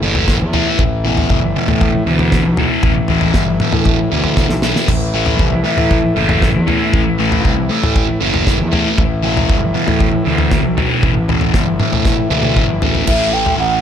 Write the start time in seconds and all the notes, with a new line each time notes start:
Already playing: A2 E3
0.01 F#1 A2 E3 A3
0.15 floor tom
0.28 kick, snare
0.40 E2
0.54 A2 E3 A3, floor tom
0.79 A1, kick, floor tom
1.04 E2 B2 E3
1.17 floor tom
1.30 G1, kick, floor tom
1.56 E2 B2 E3
1.68 A2, floor tom
1.81 kick, floor tom
2.06 D2 E2 B2 E3
2.19 floor tom
2.32 kick, snare
2.45 B1
2.57 E2 B2 E3, floor tom
2.83 A1, kick, floor tom
3.08 E2 B2 E3, floor tom
3.21 floor tom
3.34 G1, kick, snare
3.60 E2 B2 E3, mid tom
3.72 A2, floor tom
3.85 kick, floor tom
4.12 D2 E2 B2 E3
4.24 floor tom
4.37 kick, snare
4.50 B1, snare
4.62 E2 B2 E3, snare
4.76 snare
4.88 A1 A2 E3, kick, floor tom, splash
5.14 A2 E3 A3
5.26 floor tom
5.39 C2, kick, floor tom
5.64 A2 E3 A3
5.77 A2, floor tom
5.91 kick, floor tom
6.16 F#1 A2 E3 A3
6.29 floor tom
6.42 kick, snare
6.55 E2
6.67 A2 E3 A3, floor tom
6.93 A1, kick, floor tom
7.19 A2 E3 A3
7.32 floor tom
7.45 C2, kick, floor tom
7.70 A2 E3 A3
7.84 A2, floor tom
7.96 kick, floor tom
8.21 F#1 A2 E3 A3
8.34 floor tom
8.47 kick, snare
8.60 E2
8.72 A2 E3 A3, floor tom
8.98 A1, kick, floor tom
9.22 E2 B2 E3
9.37 floor tom
9.49 G1, kick, floor tom
9.74 E2 B2 E3
9.87 A2, floor tom
10.00 kick, floor tom
10.26 D2 E2 B2 E3
10.38 floor tom
10.51 kick, snare
10.64 B1
10.77 E2 B2 E3, floor tom
11.03 A1, kick, floor tom
11.29 E2 B2 E3, floor tom
11.41 floor tom
11.54 G1, kick, snare
11.80 E2 B2 E3, mid tom
11.92 A2, floor tom
12.05 kick, snare
12.30 D2 E2 B2 E3, high tom
12.43 high tom
12.56 G1, kick, mid tom
12.82 A1 E2 B2 E3, floor tom
12.95 floor tom
13.07 A1 A2 E3 A3 E5, kick, floor tom, crash
13.33 E3 A3 G5
13.46 floor tom
13.58 A1 A2 E3 A3 F#5